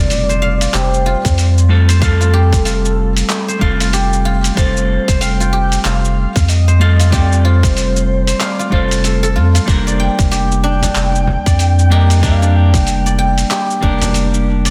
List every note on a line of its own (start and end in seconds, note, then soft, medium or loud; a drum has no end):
0.00 0.67 F1 loud
0.00 1.66 G3 medium
0.00 1.66 A3 medium
0.00 1.67 C4 medium
0.00 2.04 D#4 medium
0.00 0.61 F4 loud
0.00 1.67 F4 medium
0.00 1.68 A4 loud
0.00 0.75 D5 loud
0.00 0.80 D#5 medium
0.00 0.41 F5 medium
0.00 impact medium
0.10 open hi-hat soft
0.10 shaker medium
0.29 1.88 C5 medium
0.29 shaker soft
0.42 2.01 F5 medium
0.61 1.05 F4 medium
0.61 open hi-hat medium
0.61 shaker medium
0.74 1.15 F1 medium
0.74 2.33 G4 loud
0.74 1.70 C5 loud
0.74 clap medium
0.74 open hi-hat soft
0.74 shaker medium
0.94 shaker soft
1.06 2.20 F4 loud
1.25 2.54 F2 medium
1.25 kick loud
1.25 open hi-hat medium
1.25 shaker medium
1.38 open hi-hat soft
1.38 shaker medium
1.58 shaker soft
1.69 1.98 G3 medium
1.69 1.98 A3 medium
1.69 1.99 C4 medium
1.69 1.99 F4 medium
1.69 1.99 A4 medium
1.89 3.48 C5 medium
1.89 open hi-hat medium
1.89 shaker medium
2.00 3.57 G3 medium
2.00 3.58 A3 medium
2.00 3.58 C4 medium
2.00 3.59 F4 medium
2.00 3.89 A4 loud
2.00 3.59 A4 loud
2.00 3.61 F5 loud
2.00 kick loud
2.00 open hi-hat soft
2.00 shaker medium
2.21 2.65 F4 medium
2.21 shaker soft
2.33 3.93 G4 loud
2.53 3.23 F1 medium
2.53 kick loud
2.53 open hi-hat medium
2.53 shaker medium
2.65 3.80 F4 medium
2.65 open hi-hat soft
2.65 shaker medium
2.85 shaker soft
3.17 open hi-hat medium
3.17 shaker medium
3.29 clap medium
3.29 open hi-hat soft
3.29 shaker medium
3.48 5.08 C5 medium
3.48 shaker soft
3.59 4.50 F1 medium
3.59 4.53 G3 medium
3.59 4.53 A3 medium
3.59 4.54 C4 medium
3.59 4.54 F4 medium
3.59 5.21 F5 loud
3.59 kick medium
3.63 4.55 A4 medium
3.80 4.25 F4 medium
3.80 open hi-hat medium
3.80 shaker medium
3.93 5.52 G4 loud
3.93 open hi-hat soft
3.93 shaker medium
4.13 shaker soft
4.25 5.40 F4 loud
4.44 open hi-hat medium
4.44 shaker medium
4.55 4.98 F1 loud
4.55 6.76 G3 medium
4.55 6.77 A3 medium
4.55 6.77 C4 medium
4.55 6.78 F4 medium
4.55 6.78 A4 loud
4.55 5.22 C5 loud
4.55 kick loud
4.55 open hi-hat soft
4.55 shaker medium
4.77 shaker soft
5.08 5.78 F1 medium
5.08 6.67 C5 medium
5.08 kick loud
5.08 open hi-hat medium
5.08 shaker medium
5.21 6.80 F5 loud
5.21 5.86 G5 loud
5.21 open hi-hat soft
5.21 shaker medium
5.40 5.85 F4 medium
5.40 shaker soft
5.53 7.12 G4 loud
5.72 open hi-hat medium
5.72 shaker medium
5.84 6.26 F1 medium
5.84 6.99 F4 medium
5.84 6.50 F5 loud
5.84 clap medium
5.84 open hi-hat soft
5.84 shaker medium
6.05 shaker soft
6.36 7.65 F2 medium
6.36 kick loud
6.36 open hi-hat medium
6.36 shaker medium
6.48 7.12 D#5 loud
6.48 open hi-hat soft
6.48 shaker medium
6.68 8.27 C5 medium
6.68 shaker soft
6.79 7.09 G3 medium
6.79 7.09 A3 medium
6.79 7.09 C4 medium
6.79 7.10 F4 medium
6.79 7.10 A4 medium
6.79 8.40 F5 loud
7.00 7.44 F4 medium
7.00 open hi-hat soft
7.00 shaker medium
7.10 8.68 G3 loud
7.10 8.68 A3 medium
7.10 8.69 C4 medium
7.10 8.69 F4 medium
7.10 9.48 G4 medium
7.10 7.46 D5 loud
7.10 kick loud
7.10 open hi-hat soft
7.10 shaker medium
7.14 8.70 A4 loud
7.32 shaker soft
7.45 8.59 F4 loud
7.45 8.42 C5 loud
7.63 8.34 F1 medium
7.63 kick loud
7.63 open hi-hat medium
7.63 shaker medium
7.77 open hi-hat soft
7.77 shaker medium
7.96 shaker soft
8.27 10.26 C5 medium
8.27 open hi-hat medium
8.27 shaker medium
8.40 8.74 D5 loud
8.40 10.07 F5 loud
8.40 clap medium
8.40 open hi-hat soft
8.40 shaker medium
8.59 8.72 F4 medium
8.59 shaker soft
8.70 9.37 F1 loud
8.70 9.64 G3 medium
8.70 9.64 A3 medium
8.70 9.65 C4 medium
8.70 9.35 F4 medium
8.70 9.65 F4 medium
8.70 9.65 A4 medium
8.70 9.36 C5 medium
8.70 kick medium
8.91 open hi-hat medium
8.91 shaker medium
9.04 9.23 A4 medium
9.04 open hi-hat soft
9.04 shaker medium
9.23 11.43 A4 loud
9.23 shaker soft
9.36 9.59 F2 medium
9.36 9.54 F4 medium
9.55 12.07 F4 medium
9.55 open hi-hat soft
9.55 shaker medium
9.66 10.09 F1 loud
9.66 11.87 G3 medium
9.66 11.87 A#3 medium
9.66 11.88 D4 medium
9.66 11.88 G4 medium
9.66 11.89 A#4 medium
9.66 kick loud
9.66 open hi-hat soft
9.66 shaker medium
9.87 11.46 D5 medium
9.87 shaker soft
10.00 11.55 G5 loud
10.19 10.89 F1 medium
10.19 kick loud
10.19 open hi-hat medium
10.19 shaker medium
10.31 11.91 G4 loud
10.31 open hi-hat soft
10.31 shaker medium
10.52 shaker soft
10.64 10.82 D4 loud
10.64 11.93 G5 loud
10.82 12.23 D4 medium
10.82 open hi-hat soft
10.82 frame drum medium
10.82 shaker medium
10.95 11.37 F1 loud
10.95 clap medium
10.95 open hi-hat soft
10.95 shaker medium
11.15 shaker soft
11.27 frame drum medium
11.46 12.75 F2 medium
11.46 13.05 D5 medium
11.46 kick loud
11.46 open hi-hat medium
11.46 shaker medium
11.59 13.15 G5 loud
11.59 open hi-hat soft
11.59 shaker medium
11.79 shaker soft
11.90 12.19 G3 medium
11.90 12.20 A#3 medium
11.90 12.20 D4 medium
11.90 12.20 G4 medium
11.90 13.50 G4 medium
11.90 12.20 A#4 medium
11.90 12.23 D#5 medium
12.10 open hi-hat medium
12.10 shaker medium
12.21 13.78 G3 loud
12.21 13.79 A#3 medium
12.21 13.79 D4 medium
12.21 12.42 D4 medium
12.21 13.80 G4 medium
12.21 12.57 F5 loud
12.21 kick loud
12.21 open hi-hat soft
12.21 shaker medium
12.25 13.80 A#4 loud
12.42 13.82 D4 medium
12.42 shaker soft
12.56 13.19 G5 loud
12.74 13.44 F1 loud
12.74 kick loud
12.74 open hi-hat medium
12.74 frame drum medium
12.74 shaker medium
12.87 open hi-hat soft
12.87 shaker medium
13.06 14.65 D5 medium
13.06 shaker soft
13.19 14.70 G5 loud
13.38 open hi-hat medium
13.38 shaker medium
13.50 14.70 G4 loud
13.50 clap medium
13.50 open hi-hat soft
13.50 shaker medium
13.70 shaker soft
13.81 14.70 F1 medium
13.81 14.70 G3 medium
13.81 14.70 A#3 medium
13.81 14.70 D4 medium
13.81 14.01 D4 loud
13.81 14.70 G4 medium
13.81 14.70 A#4 medium
13.81 kick medium
14.01 14.70 D4 medium
14.01 open hi-hat medium
14.01 frame drum medium
14.01 shaker medium
14.14 open hi-hat soft
14.14 shaker soft
14.34 shaker soft
14.65 14.70 D5 medium
14.65 open hi-hat medium
14.65 shaker medium